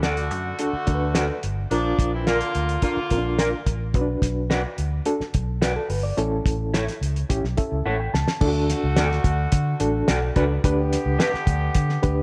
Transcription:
Already playing: fingered electric bass D2, reed electric piano A4
0.02 horn section D3 A3 F#4, clean electric guitar F#4 A4 D5, snare, closed hi-hat
0.17 closed hi-hat
0.31 fingered electric bass F#2, closed hi-hat
0.59 horn section D3 A3 F#4, reed electric piano D4 F#4 A4, closed hi-hat
0.73 muted fingered electric bass stroke
0.87 fingered electric bass D2, reed electric piano D4 F#4 A#4, kick, closed hi-hat
0.94 reed electric piano B4
1.15 clean electric guitar F#4 A4 D5, snare, closed hi-hat
1.43 fingered electric bass G1, closed hi-hat
1.71 fingered electric bass A#1, horn section A#2 F3 D4, reed electric piano D4 F4 A#4, closed hi-hat
1.99 fingered electric bass A#1, kick, closed hi-hat
2.13 horn section E3 C4 E4
2.26 horn section D3 A#3 F4, clean electric guitar F4 A#4 D5, snare, closed hi-hat
2.41 closed hi-hat
2.55 fingered electric bass D2, closed hi-hat
2.69 closed hi-hat
2.82 horn section D3 A#3 F4, reed electric piano D4 F4 A#4, kick, closed hi-hat
2.97 muted fingered electric bass stroke
3.10 fingered electric bass A#1, reed electric piano C4 F4 A#4, kick, closed hi-hat
3.18 reed electric piano D4
3.39 clean electric guitar F4 A#4 D5, snare, closed hi-hat
3.66 fingered electric bass A1, kick, closed hi-hat
3.94 fingered electric bass B1, reed electric piano C#4 F#4 B4, kick, closed hi-hat
4.01 reed electric piano D4
4.22 fingered electric bass B1, kick, snare, closed hi-hat
4.50 clean electric guitar F#4 B4 D5, snare, closed hi-hat
4.78 fingered electric bass D2, closed hi-hat
5.05 reed electric piano D4 F#4 A4, closed hi-hat
5.20 muted fingered electric bass stroke, snare
5.34 fingered electric bass B1, kick, closed hi-hat
5.62 clean electric guitar F#4 B4 D5, snare, closed hi-hat
5.76 reed electric piano A4
5.90 fingered electric bass G1, reed electric piano B4, open hi-hat
6.03 reed electric piano D5
6.17 fingered electric bass A1, reed electric piano C#4 E4 A4, closed hi-hat
6.45 fingered electric bass A1, kick, closed hi-hat
6.74 clean electric guitar E4 A4 C#5, snare, closed hi-hat
6.88 snare, closed hi-hat
7.01 fingered electric bass C#2, closed hi-hat
7.16 closed hi-hat
7.30 fingered electric bass A1, reed electric piano C#4 E4 G4, kick, closed hi-hat
7.44 fingered electric bass B1, snare
7.57 reed electric piano C#4 E4 A4 E5, kick, closed hi-hat
7.72 fingered electric bass C#2
7.86 fingered electric bass A1, clean electric guitar E4 A4 C#5, reed electric piano F#5
8.00 reed electric piano G5
8.14 fingered electric bass C#2, reed electric piano A5, snare
8.28 snare
8.41 fingered electric bass D2, horn section D3 A3 F#4, reed electric piano D4 E4 A4, kick, crash
8.48 reed electric piano F#4
8.69 snare, closed hi-hat
8.83 fingered electric bass C#2
8.96 fingered electric bass D2, clean electric guitar F#4 A4 D5, snare, closed hi-hat
9.12 snare
9.24 fingered electric bass D2, kick, closed hi-hat
9.52 fingered electric bass D3, kick, closed hi-hat
9.80 fingered electric bass A1, reed electric piano D4 F#4 A4, closed hi-hat
10.08 fingered electric bass B1, clean electric guitar F#4 A4 D5, snare, closed hi-hat
10.36 fingered electric bass C#2, reed electric piano D4 F#4 B4, clean electric guitar F#4 A4 D5, kick, closed hi-hat
10.64 fingered electric bass D2, horn section D3 B3 G4, reed electric piano D4 G4 B4, kick, closed hi-hat
10.93 snare, closed hi-hat
11.06 fingered electric bass C#2
11.19 clean electric guitar D4 G4 B4, snare, closed hi-hat
11.34 muted fingered electric bass stroke, snare
11.47 fingered electric bass D2, kick, closed hi-hat
11.75 fingered electric bass D3, kick, closed hi-hat
11.89 snare
12.02 fingered electric bass D2, reed electric piano D4 G4 B4, kick, closed hi-hat

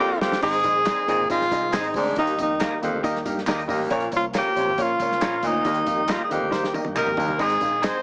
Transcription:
Already playing: grand piano A#2, tonewheel organ F4 A#4 D5 A#5
0.00 baritone saxophone F2, clean electric guitar F4 A#4 D5, tenor saxophone G4
0.20 baritone saxophone F2, grand piano A#3 D4 F4 C5, tenor saxophone G4, snare
0.32 snare
0.41 fingered electric bass G#1, baritone saxophone G#2, grand piano G#2 C4 D#4 G#4 C5 D#5, tonewheel organ D#3 G#3 C4 G#4, tenor saxophone G#4, kick, crash, tambourine
0.53 closed hi-hat
0.63 fingered electric bass A#1, grand piano C4 D#4 G#4 C5 D#5, kick, closed hi-hat, tambourine
0.85 grand piano C4 D#4 G#4 C5 D5, clean electric guitar D#4 G#4 C5 D#5, snare, clap, closed hi-hat, tambourine
1.07 fingered electric bass G#1, baritone saxophone A#2, grand piano C4 D#4 G#4 C5 D#5, closed hi-hat, tambourine
1.19 fingered electric bass G1
1.29 fingered electric bass G#1, grand piano C4 D#4 G#4 C5 D#5, tenor saxophone F4, kick, closed hi-hat, tambourine
1.41 snare
1.51 fingered electric bass C2, grand piano C4 D#4 G#4 C5 D#5, kick, closed hi-hat, tambourine
1.72 fingered electric bass G#1, grand piano C4 D#4 G#4 C5 D#5, clean electric guitar D#4 G#4 C5 D#5, tenor saxophone D#4, snare, clap, closed hi-hat, tambourine
1.84 closed hi-hat
1.94 fingered electric bass D2, baritone saxophone G#2, grand piano C4 D#4 G#4 C5 D5, tenor saxophone D4, kick, open hi-hat, tambourine
2.16 fingered electric bass D#2, baritone saxophone D#2, grand piano D#3 A#3 D#4 G4 A#4 D#5, tonewheel organ G3 A#3 G4, tenor saxophone D#4, kick, closed hi-hat
2.27 closed hi-hat
2.38 fingered electric bass F2, grand piano A#3 D#4 G4 A#4 D#5, tenor saxophone D#4, kick, closed hi-hat, tambourine
2.60 grand piano A#3 D#4 G4 A#4 F5, clean electric guitar D#4 G4 A#4 D#5, snare, clap, closed hi-hat, tambourine
2.81 fingered electric bass D#2, baritone saxophone F2, grand piano A#3 D#4 G4 A#4 D#5, closed hi-hat, tambourine
2.94 fingered electric bass D2
3.03 fingered electric bass D#2, grand piano A#3 D#4 G4 A#4 D#5, kick, closed hi-hat, tambourine
3.15 snare
3.25 fingered electric bass G2, grand piano A#3 D#4 G4 A#4 F5, kick, closed hi-hat, tambourine
3.38 snare
3.47 fingered electric bass D#2, grand piano A#3 D#4 G4 A#4 D#5, clean electric guitar D#4 G4 A#4 D#5, snare, clap, closed hi-hat, tambourine
3.59 closed hi-hat
3.68 fingered electric bass A1, baritone saxophone D#2, grand piano A#3 D#4 G4 A#4 D#5, kick, open hi-hat, tambourine
3.90 fingered electric bass A#1, grand piano A#2 A#3 C#4 F4 A#4 C#5, baritone saxophone A#2, tonewheel organ F3 C#4 F4, kick, closed hi-hat
4.00 closed hi-hat
4.11 fingered electric bass C2, grand piano A#3 C#4 F4 A#4 C#5, kick, closed hi-hat, tambourine
4.16 tenor saxophone F4
4.33 grand piano A#3 C#4 F4 A#4 C#5, clean electric guitar C#4 F4 A#4 C#5, snare, clap, closed hi-hat, tambourine
4.38 tenor saxophone G4
4.55 fingered electric bass A#1, baritone saxophone C3, grand piano A#3 C#4 F4 A#4 C#5, closed hi-hat, tambourine
4.67 fingered electric bass G#1
4.77 fingered electric bass A#1, grand piano A#3 C#4 F4 A#4 C#5, kick, closed hi-hat, tambourine
4.82 tenor saxophone F4
5.00 fingered electric bass C#2, grand piano A#3 C#4 F4 A#4 C#5, kick, closed hi-hat, tambourine
5.12 snare
5.21 fingered electric bass A#1, grand piano A#3 C#4 F4 A#4 C#5, clean electric guitar C#4 F4 A#4 C#5, snare, clap, closed hi-hat, tambourine
5.42 fingered electric bass D2, baritone saxophone A#2, grand piano A#3 C#4 F4 A#4 D#5, kick, closed hi-hat, tambourine
5.47 tenor saxophone D#4
5.64 fingered electric bass D#2, baritone saxophone D#2, grand piano D#3 A#3 D#4 G4 A#4 D#5, tonewheel organ D#3 G3 A#3 G4, kick, closed hi-hat, tambourine
5.74 closed hi-hat
5.86 fingered electric bass F2, grand piano A#3 D#4 G4 A#4 F5, kick, closed hi-hat, tambourine
6.07 grand piano A#3 D#4 G4 A#4 D#5, clean electric guitar D#4 G4 A#4 D#5, tenor saxophone F4, snare, clap, closed hi-hat, tambourine
6.24 tenor saxophone G#4
6.29 fingered electric bass D#2, baritone saxophone F2, grand piano A#3 D#4 G4 A#4 D#5, tenor saxophone G4, closed hi-hat, tambourine
6.42 fingered electric bass D2
6.50 fingered electric bass D#2, grand piano A#3 D#4 G4 A#4 C5, kick, snare, tambourine
6.64 snare
6.73 grand piano A#3 D#4 G4 A#4 D#5, muted fingered electric bass stroke, high tom, tambourine
6.85 fingered electric bass G2, high tom
6.95 grand piano A#3 D#4 G4 A#4 D#5, clean electric guitar D#4 G4 A#4 D#5, tenor saxophone A#4, muted fingered electric bass stroke, clap, mid tom, tambourine
7.07 fingered electric bass D#2, mid tom
7.16 baritone saxophone D#2, fingered electric bass D#3, grand piano A#3 D#4 G4 A#4 D#5, floor tom, tambourine
7.28 floor tom
7.38 fingered electric bass G#1, grand piano G#2 C4 D#4 G#4 C5 D#5, baritone saxophone G#2, tonewheel organ D#3 G#3 C4 G#4, tenor saxophone G#4, kick, tambourine, crash
7.50 closed hi-hat
7.61 fingered electric bass A#1, grand piano C4 D#4 G#4 C5 F5, kick, closed hi-hat, tambourine
7.82 grand piano C4 D#4 G#4 C5 D#5, clean electric guitar D#4 G#4 C5 D#5, tenor saxophone C5, snare, clap, closed hi-hat, tambourine

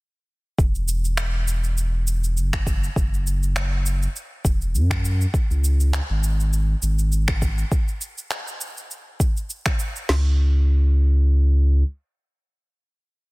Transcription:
0.58 sub bass E1, kick, shaker
0.75 shaker
0.88 shaker
1.05 shaker
1.17 finger snap, shaker
1.48 shaker
1.64 shaker
1.78 shaker
2.07 shaker
2.24 shaker
2.37 sub bass F#1, shaker
2.53 finger snap, kick, shaker
2.67 kick, shaker
2.84 shaker
2.96 sub bass F#1, kick, shaker
3.14 shaker
3.27 shaker
3.43 shaker
3.56 finger snap, shaker
3.86 shaker
4.02 shaker
4.16 shaker
4.45 sub bass E1, kick, shaker
4.61 shaker
4.74 sub bass F#2, shaker
4.91 finger snap, kick, shaker
5.05 shaker
5.21 shaker
5.34 kick, shaker
5.50 sub bass C#2, shaker
5.64 shaker
5.80 shaker
5.93 finger snap, shaker
6.10 sub bass G#1
6.24 shaker
6.40 shaker
6.53 shaker
6.82 sub bass G#1, shaker
6.99 shaker
7.12 shaker
7.28 finger snap, kick, shaker
7.42 kick, shaker
7.58 shaker
7.72 kick, shaker
7.88 shaker
8.01 shaker
8.18 shaker
8.31 finger snap, shaker
8.48 shaker
8.61 shaker
8.77 shaker
8.91 shaker
9.20 kick, shaker
9.37 shaker
9.50 shaker
9.66 finger snap, kick, shaker
9.79 shaker
9.96 shaker
10.09 sub bass C#2, snare, crash

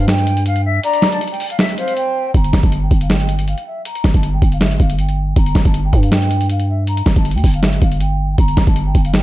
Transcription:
Already playing: 808-style bass G2
0.08 flute G5, finger snap, snare, closed hi-hat
0.18 closed hi-hat
0.27 closed hi-hat
0.37 closed hi-hat
0.46 flute F5, closed hi-hat
0.56 closed hi-hat
0.65 flute E5
0.83 soft synth lead D5, flute A#5, closed hi-hat
0.93 closed hi-hat
1.02 finger snap, snare, closed hi-hat
1.12 flute A5, closed hi-hat
1.21 closed hi-hat
1.28 flute G5, closed hi-hat
1.34 closed hi-hat
1.40 open hi-hat
1.50 flute F5, closed hi-hat
1.59 flute E5, finger snap, snare, closed hi-hat
1.69 closed hi-hat
1.78 soft synth lead C5, flute F5, closed hi-hat
1.88 closed hi-hat
1.97 flute G5, closed hi-hat
2.34 808-style bass G1, flute A#5, kick, closed hi-hat
2.44 closed hi-hat
2.53 808-style bass G1, finger snap, kick, snare, closed hi-hat
2.63 808-style bass G1, flute A5, kick, closed hi-hat
2.72 closed hi-hat
2.82 flute G5
2.91 808-style bass G1, kick, closed hi-hat
3.01 flute F5, closed hi-hat
3.10 flute G5, finger snap, snare, closed hi-hat
3.20 closed hi-hat
3.29 closed hi-hat
3.39 closed hi-hat
3.48 flute F5, closed hi-hat
3.58 closed hi-hat
3.66 flute E5
3.85 flute A#5, closed hi-hat
3.95 closed hi-hat
4.04 808-style bass G1, finger snap, kick, snare, closed hi-hat
4.14 808-style bass G1, flute A5, kick, closed hi-hat
4.23 closed hi-hat
4.33 flute G5
4.42 808-style bass G1, kick, closed hi-hat
4.52 flute F5, closed hi-hat
4.61 flute E5, finger snap, snare, closed hi-hat
4.71 closed hi-hat
4.80 808-style bass G1, flute F5, kick, closed hi-hat
4.90 closed hi-hat
4.99 flute G5, closed hi-hat
5.09 closed hi-hat
5.36 808-style bass G1, flute A#5, kick, closed hi-hat
5.46 closed hi-hat
5.55 808-style bass G1, finger snap, kick, snare, closed hi-hat
5.65 808-style bass G1, flute A5, kick, closed hi-hat
5.74 closed hi-hat
5.84 flute G5
5.93 808-style bass G2, kick, closed hi-hat
6.03 flute F5, closed hi-hat
6.12 flute G5, finger snap, snare, closed hi-hat
6.22 closed hi-hat
6.31 closed hi-hat
6.41 closed hi-hat
6.50 flute F5, closed hi-hat
6.60 closed hi-hat
6.69 flute E5
6.87 flute A#5, closed hi-hat
6.97 closed hi-hat
7.06 808-style bass G1, finger snap, kick, snare, closed hi-hat
7.16 808-style bass G1, flute A5, kick, closed hi-hat
7.25 closed hi-hat
7.31 808-style bass D2, flute G5, closed hi-hat
7.38 closed hi-hat
7.44 808-style bass G1, kick, open hi-hat
7.54 flute F5, closed hi-hat
7.63 flute E5, finger snap, snare, closed hi-hat
7.73 closed hi-hat
7.82 808-style bass G1, flute F5, kick, closed hi-hat
7.92 closed hi-hat
8.00 flute G5, closed hi-hat
8.38 808-style bass G1, flute A#5, kick, closed hi-hat
8.48 closed hi-hat
8.57 808-style bass G1, finger snap, kick, snare, closed hi-hat
8.67 808-style bass G1, flute A5, kick, closed hi-hat
8.76 closed hi-hat
8.86 flute G5
8.95 808-style bass G1, kick, closed hi-hat
9.05 flute F5, closed hi-hat
9.14 flute G5, finger snap, snare, closed hi-hat

